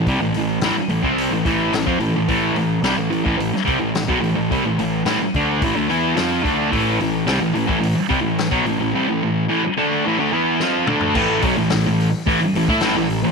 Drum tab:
CC |----------------|----------------|----------------|----------------|
HH |o-o-o-o-o-o-o-o-|o-o-o-o-o-o-o-o-|o-o-o-o-o-o-o-o-|o-o-o-o-o-o-o-o-|
SD |----o-------o---|----o----o--o---|----o-------o---|----o-------o---|
T2 |----------------|----------------|----------------|----------------|
FT |----------------|----------------|----------------|----------------|
BD |o------o--o--o--|o------o--o--o--|o-----o-o-----o-|o------o--o--o--|

CC |----------------|x---------------|
HH |----------------|--o-o-o-o-o-o-o-|
SD |------------o---|----o-------o---|
T2 |--------------o-|----------------|
FT |---------------o|----------------|
BD |----------------|o-o-----o--o----|